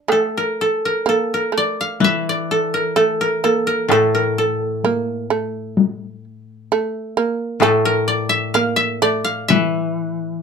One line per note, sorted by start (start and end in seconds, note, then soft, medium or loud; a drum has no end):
0.08 1.05 A3 medium
0.08 0.43 A4 medium
0.08 taiko rim medium
0.37 0.67 A#4 medium
0.61 0.91 A4 medium
0.85 1.15 A#4 medium
1.06 1.52 A#3 medium
1.06 1.40 A4 medium
1.34 2.57 A#4 medium
1.52 2.48 A3 medium
1.58 2.29 D5 medium
1.81 2.10 F5 medium
2.00 4.83 E3 medium
2.00 taiko high medium
2.04 3.54 E5 medium
2.29 3.89 D5 medium
2.51 2.80 A4 medium
2.74 3.02 A#4 medium
2.96 3.43 A3 medium
2.96 3.27 A4 medium
3.21 3.50 A#4 medium
3.44 3.91 A#3 medium
3.44 3.73 A4 medium
3.67 3.98 A#4 medium
3.88 6.69 A2 medium
3.88 4.84 A3 medium
3.88 4.21 A4 medium
3.88 taiko rim medium
4.15 4.44 A#4 medium
4.38 7.13 A4 medium
4.84 5.30 A#3 medium
4.84 taiko high soft
5.30 6.24 A3 medium
5.77 taiko high medium
6.72 7.17 A3 medium
7.17 7.62 A#3 medium
7.60 10.42 A2 medium
7.60 8.55 A3 loud
7.60 7.91 A4 medium
7.60 taiko rim medium
7.85 9.69 A#4 medium
8.08 9.02 D5 medium
8.29 8.60 E5 medium
8.54 9.02 A#3 medium
8.54 8.82 F5 loud
8.76 9.30 E5 medium
9.02 9.97 A3 medium
9.02 10.42 D5 medium
9.24 9.54 F5 medium
9.48 10.42 E3 medium
9.48 10.42 E5 medium
9.48 taiko high medium